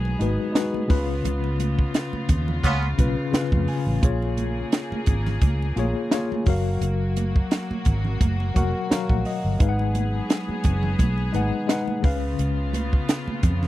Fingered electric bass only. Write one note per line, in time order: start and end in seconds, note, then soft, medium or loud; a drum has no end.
0.00 0.15 B1 medium
0.20 0.36 G#1 medium
0.90 1.19 C#2 medium
1.25 1.84 C#2 loud
2.13 muted fingered electric bass stroke soft
2.29 2.59 D#2 medium
2.63 2.93 C#2 medium
2.99 3.15 B1 medium
3.33 muted fingered electric bass stroke soft
3.52 3.66 F2 medium
3.87 4.00 A1 loud
4.03 4.62 A#1 loud
4.92 muted fingered electric bass stroke soft
5.07 5.37 G#1 medium
5.42 5.72 C#2 medium
5.76 5.93 A#1 medium
6.47 6.76 F#1 loud
6.81 7.41 F#1 loud
7.71 muted fingered electric bass stroke soft
7.86 8.16 G#1 medium
8.21 8.50 F#1 medium
8.56 8.72 F1 medium
8.91 muted fingered electric bass stroke soft
9.10 9.23 A#1 medium
9.44 9.58 G1 medium
9.60 10.20 G#1 loud
10.49 muted fingered electric bass stroke soft
10.65 10.94 F#1 medium
10.99 11.29 B1 medium
11.34 11.50 G#1 medium
12.04 12.34 C#2 medium
12.39 12.98 C#2 loud
13.28 muted fingered electric bass stroke soft
13.43 13.68 F2 loud